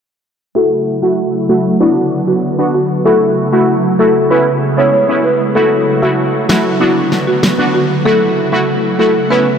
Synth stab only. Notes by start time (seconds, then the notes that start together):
0.55 A3 E4 F#4
1.02 A3 E4 F#4
1.49 A3 E4 F#4
1.80 B3 D4 F#4
2.58 B3 D4 F#4
3.05 A3 E4 F#4
3.52 A3 E4 F#4
3.99 A3 E4 F#4
4.30 B3 C#4 E4
4.77 B3 C#4 E4
5.08 B3 C#4 E4
5.55 A3 E4 F#4
6.02 A3 E4 F#4
6.49 A3 E4 F#4
6.80 B3 D4 F#4
7.58 B3 D4 F#4
8.05 A3 E4 F#4
8.52 A3 E4 F#4
8.99 A3 E4 F#4
9.30 B3 C#4 E4